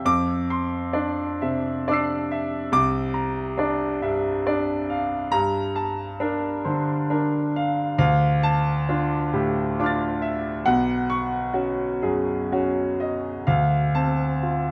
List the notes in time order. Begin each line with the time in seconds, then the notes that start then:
0.05 F2 D6
0.50 C6
0.93 D4 D5
1.42 C3 E5
1.88 D4 D5 D6 E6
1.94 C7
2.31 E5
2.72 C2 D6
3.14 A#5
3.58 D4 D5
4.02 G2 E5
4.47 D4 D5
4.90 F5
5.32 G2 A#5
5.76 A5
6.20 D4 A#4
6.65 D3 C5
7.10 D4 A#4
7.56 F5
7.98 D2 F5
8.43 A5
8.89 D4 F4
9.33 A2 G4
9.79 D4 F4 D6
9.84 F6 A6
10.22 E5
10.66 B1 F#5
11.10 C#6
11.54 C#4 F#4
12.02 F#2 G#4
12.52 C#4 F#4
13.00 D#5
13.47 D2 F5
13.95 C4 A5
14.43 F4